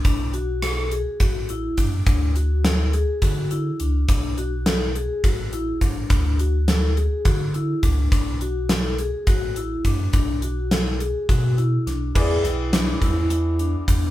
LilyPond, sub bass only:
\new Staff \with { instrumentName = "Sub bass" } { \clef bass \time 7/8 \key b \dorian \tempo 4 = 104 b,,2 a,,4 fis,8 | d,2 d4 cis,8 | b,,2 a,,4 a,,8 | d,2 d4 cis,8 |
b,,2 a,,4 fis,8 | b,,2 b,4 b,,8 | e,8 b,,4 e,4. e,8 | }